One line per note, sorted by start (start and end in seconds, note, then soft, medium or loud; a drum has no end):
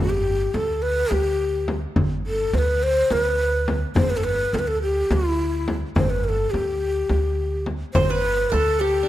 0.00 0.45 G1 medium
0.00 0.11 F#4 medium
0.10 0.56 G4 medium
0.54 1.03 D2 medium
0.54 0.84 A4 medium
0.54 frame drum medium
0.82 1.13 B4 medium
1.11 1.84 D2 medium
1.11 1.76 G4 medium
1.11 frame drum medium
1.68 frame drum medium
1.96 2.45 G1 medium
1.96 frame drum medium
2.27 2.56 A4 medium
2.53 3.02 D2 medium
2.53 2.59 C5 medium
2.53 frame drum medium
2.58 2.84 B4 medium
2.83 3.13 C5 medium
3.10 3.83 D2 medium
3.10 3.76 B4 medium
3.10 frame drum medium
3.68 frame drum medium
3.95 4.44 G1 medium
3.95 4.11 C5 medium
3.95 frame drum medium
4.10 4.18 B4 medium
4.17 4.25 A4 medium
4.24 4.56 B4 loud
4.53 5.02 D2 medium
4.53 4.60 A4 medium
4.53 frame drum medium
4.59 4.69 B4 medium
4.68 4.82 A4 medium
4.82 5.14 G4 medium
5.10 5.83 D2 medium
5.10 5.75 E4 medium
5.10 frame drum medium
5.68 frame drum medium
5.96 6.44 G1 medium
5.96 6.11 C5 medium
5.96 frame drum medium
6.10 6.26 B4 medium
6.24 6.30 A#4 medium
6.29 6.52 A4 medium
6.51 7.02 D2 medium
6.51 7.66 G4 medium
6.51 frame drum medium
7.09 7.82 D2 medium
7.09 frame drum medium
7.66 frame drum medium
7.94 8.44 G1 medium
7.94 8.11 C5 medium
7.94 8.16 C5 medium
7.94 frame drum medium
8.10 8.51 B4 loud
8.10 9.09 B4 medium
8.50 9.01 D2 medium
8.50 9.09 A4 medium
8.50 8.55 A#4 medium
8.50 frame drum medium
8.54 8.81 A4 medium
8.80 9.09 G4 medium
9.03 9.09 D4 soft